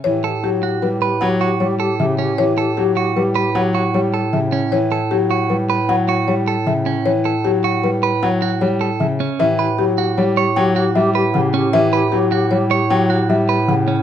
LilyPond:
<<
  \new Staff \with { instrumentName = "Marimba" } { \time 6/4 \key a \mixolydian \tempo 4 = 154 cis''8 r8 g'8 r8 b'8 r8 fis''8 r8 cis''8 r8 e''8 r8 | cis''8 r8 g'8 r8 b'8 r8 fis''8 r8 cis''8 r8 e''8 r8 | cis''8 r8 g'8 r8 b'8 r8 fis''8 r8 cis''8 r8 e''8 r8 | cis''8 r8 g'8 r8 b'8 r8 fis''8 r8 cis''8 r8 e''8 r8 |
e''8 r8 g'8 r8 cis''8 r8 g''8 r8 e''8 r8 fis''8 r8 | e''8 r8 g'8 r8 cis''8 r8 g''8 r8 e''8 r8 fis''8 r8 | }
  \new Staff \with { instrumentName = "Clean electric guitar" } { \time 6/4 \key a \mixolydian r8 a'8 r8 fis'8 r8 b'8 r8 fis'8 r8 a'8 r8 cis'8 | r8 a'8 r8 fis'8 r8 b'8 r8 fis'8 r8 a'8 r8 cis'8 | r8 a'8 r8 fis'8 r8 b'8 r8 fis'8 r8 a'8 r8 cis'8 | r8 a'8 r8 fis'8 r8 b'8 r8 fis'8 r8 a'8 r8 cis'8 |
r8 b'8 r8 fis'8 r8 cis''8 r8 fis'8 r8 b'8 r8 cis'8 | r8 b'8 r8 fis'8 r8 cis''8 r8 fis'8 r8 b'8 r8 cis'8 | }
  \new Staff \with { instrumentName = "Alto flute" } { \time 6/4 \key a \mixolydian g'8 g'8 g'8 g'8 g'8 g'8 g'8 g'8 g'8 g'8 g'8 g'8 | g'8 g'8 g'8 g'8 g'8 g'8 g'8 g'8 g'8 g'8 g'8 r8 | r1. | r1. |
g'8 g'8 g'8 g'8 g'8 g'8 g'8 g'8 g'8 g'8 g'8 g'8 | g'8 g'8 g'8 g'8 g'8 g'8 g'8 g'8 g'8 g'8 g'8 r8 | }
  \new Staff \with { instrumentName = "Grand piano" } { \clef bass \time 6/4 \key a \mixolydian e8 r8 fis8 r8 g8 r8 fis8 r8 g8 r8 cis8 r8 | e8 r8 fis8 r8 g8 r8 fis8 r8 g8 r8 cis8 r8 | e8 r8 fis8 r8 g8 r8 fis8 r8 g8 r8 cis8 r8 | e8 r8 fis8 r8 g8 r8 fis8 r8 g8 r8 cis8 r8 |
e8 r8 fis8 r8 g8 r8 fis8 r8 g8 r8 cis8 r8 | e8 r8 fis8 r8 g8 r8 fis8 r8 g8 r8 cis8 r8 | }
  \new Staff \with { instrumentName = "Bass clarinet" } { \clef bass \time 6/4 \key a \mixolydian a,1.~ | a,1.~ | a,1.~ | a,1. |
a,1.~ | a,1. | }
>>